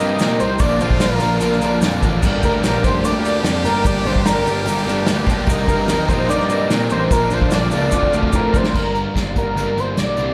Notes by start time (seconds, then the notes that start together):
Already playing: G2 C3 G3 G4 A#4 D#5 G5 C6
0.00 A#3 C4 D#4 A#4
0.18 A#2 C3 G3 A#3 C4 D#4 A#4, snare, open hi-hat, shaker
0.38 C2 C3 G3 A#3 C4 D#4 A#4 C5, open hi-hat, shaker
0.58 A#1 A#2 D3 F3 A#3 D4 A4 D5, kick, open hi-hat, shaker
0.62 F4 F5 A5 D6
0.78 A#1 A#2 D3 F3 A#3 D4 A4 C5, open hi-hat, shaker
0.91 kick
1.00 A#1 A#2 D3 F3 A#3 D4 A4 A#4, snare, open hi-hat, shaker
1.19 A#1 A#2 D3 F3 A#3 D4 A4, open hi-hat, shaker
1.40 A#1 A#2 D3 F3 A#3 D4 A4, open hi-hat, shaker
1.52 snare
1.59 A#1 A#2 D3 F3 A#3 D4 A4, open hi-hat, shaker
1.80 F2 A#2 D3 F3 A#3 D4 A4, snare, open hi-hat, shaker
2.02 A1 A#2 D3 F3 A#3 D4 A4, kick, open hi-hat, shaker
2.22 G1 G2 D3 G3 A#3 D4 G4 A4 G5, kick, crash, shaker
2.42 D2 G2 D3 G3 A#3 D4 A4 A#4, kick, open hi-hat, shaker
2.61 A#1 G2 D3 G3 A#3 D4 A4, snare, open hi-hat, shaker
2.67 A#4
2.81 F1 G2 D3 G3 A#3 D4 A4 C5, kick, open hi-hat, shaker
3.03 D2 G2 D3 G3 A#3 D4 A4 D5, open hi-hat, shaker
3.23 G2 D3 G3 A#3 D4 A4, open hi-hat, shaker
3.43 F2 G2 D3 G3 A#3 D4 A4, snare, open hi-hat, shaker
3.64 G1 G2 D3 G3 A#3 D4 A4 A#4, open hi-hat, shaker
3.82 G1 G2 D3 G3 A#3 D4 A4, kick, open hi-hat, shaker
3.87 D5
4.04 G1 G2 D3 G3 A#3 D4 A4 C5, open hi-hat
4.16 kick
4.24 G1 G2 D3 G3 A#3 D4 A4 A#4, snare, open hi-hat, shaker
4.44 G1 G2 D3 G3 A#3 D4 A4, open hi-hat, shaker
4.65 G1 G2 D3 G3 A#3 D4 A4, open hi-hat, shaker
4.77 snare
4.85 G1 G2 D3 G3 A#3 D4 A4, open hi-hat, shaker
5.06 D2 G2 D3 G3 A#3 D4 A4, snare, open hi-hat, shaker
5.26 B1 G2 D3 G3 A#3 D4 A4, kick, open hi-hat, shaker
5.46 C2 C3 G3 A#3 C4 D#4 A#4 C5, kick, open hi-hat, shaker
5.51 A#5
5.68 G2 C3 G3 A#3 C4 D#4 A#4, kick, open hi-hat, shaker
5.88 D#2 C3 G3 A#3 C4 D#4 A#4, snare, open hi-hat, shaker
6.08 A#1 C3 G3 A#3 C4 D#4 A#4 C5, kick, open hi-hat, shaker
6.29 G2 C3 G3 A#3 C4 D#4 A#4 D5, open hi-hat, shaker
6.40 snare
6.48 C3 G3 A#3 C4 D#4 A#4, open hi-hat, shaker
6.69 A#2 C3 G3 A#3 C4 D#4 A#4, snare, open hi-hat, shaker
6.90 A1 C3 G3 A#3 C4 D#4 A#4 C5, open hi-hat, shaker
7.10 A#1 A#2 D3 F3 A#3 D4 A4 A#4 F5 A5 D6, kick, open hi-hat, shaker
7.30 A#1 A#2 D3 F3 A#3 D4 A4 C5, open hi-hat, shaker
7.42 kick
7.51 A#1 A#2 D3 F3 A#3 D4 A4 D5, snare, open hi-hat, shaker
7.71 C#2 A#2 D3 F3 A#3 D4 A4, open hi-hat, shaker
7.92 D2 D3 F3 A3 C4 D4 F4 A4, kick, shaker
7.96 C5 D6
8.03 kick
8.12 D2 D3 F3 A3 C4 D4 A4, shaker
8.23 kick
8.33 A2 D3 F3 A3 C4 D4 A4 A#4, kick, shaker
8.53 D2 D3 F3 A3 C4 D4 A4, kick, shaker
8.57 C5
8.64 snare
8.73 G1 G2 D3 G3 A#3 D4 A#4, kick, crash
8.94 G3 A#3 D4, closed hi-hat
9.14 G1 D3 G3 A#3 D4, kick, snare, closed hi-hat
9.36 G1 A#4, kick, closed hi-hat
9.56 G1 G2 D3 G3 A#3 D4, closed hi-hat
9.75 G1 G3 A#3 D4, closed hi-hat
9.80 C5
9.96 B1 D3 G3 A#3 D4 D5, snare, closed hi-hat
10.17 C2 C3 G3 C4 D4, closed hi-hat